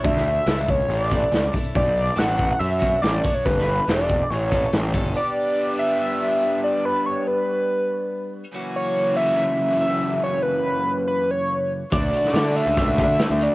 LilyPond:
<<
  \new Staff \with { instrumentName = "Analog synth lead" } { \time 4/4 \key g \lydian \tempo 4 = 142 e''8 e''4 cis''8 d''4. r8 | d''4 fis''4 e''4 d''8. cis''16 | b'4 d''4 cis''4. r8 | d''4. e''8 e''4. d''8 |
b'8 cis''8 b'2~ b'8 r8 | r8 cis''4 e''4. e''4 | cis''8 b'4. b'8 cis''4 r8 | d''4. e''8 e''4. d''8 | }
  \new Staff \with { instrumentName = "Overdriven electric guitar" } { \time 4/4 \key g \lydian <e a d'>8 r8 <e a d' e'>8 r4 <e a d' e'>8 r8 <e a d' e'>8 | r4 <fis b d' fis'>8 r4 <fis b d' fis'>8 r8 <fis b d' fis'>8 | r4 <g b d' g'>8 r4 <e a cis' a'>8 r8 <e a cis' a'>8 | <g b d' g'>1~ |
<g b d' g'>1 | <fis, cis e bes cis' fis'>1~ | <fis, cis e bes cis' fis'>1 | <d a d' fis'>1 | }
  \new Staff \with { instrumentName = "Picked electric bass" } { \clef bass \time 4/4 \key g \lydian d,4 cis,4 a,,4 cis,8 r8 | b,,4 a,,4 fis,4 a,,8 r8 | g,,4 e,,4 a,,4 a,,8 g,,8 | r1 |
r1 | r1 | r1 | d,8 r8 d8. cis,8. d8 r16 d,8 r16 | }
  \new DrumStaff \with { instrumentName = "Drums" } \drummode { \time 4/4 <hho bd>16 sn16 hho8 <hho sn>8 <hho bd>8 hho8 <hho bd>8 <hho sn>8 <hho bd>8 | <hho bd>8 hho8 <hho sn>8 <hho bd>8 hho8 <hho bd>8 <hho sn>8 <hho bd>8 | <hho bd>16 sn16 hho8 <hho sn>8 <hho bd>8 hho8 <hho bd>8 <hho sn>8 <hho bd>8 | r4 r4 r4 r4 |
r4 r4 r4 r4 | r4 r4 r4 r4 | r4 r4 r4 r4 | <hh bd>8 hh16 sn16 <hh sn>8 hh8 <hh bd>8 <hh bd>8 <hh sn>8 hh8 | }
>>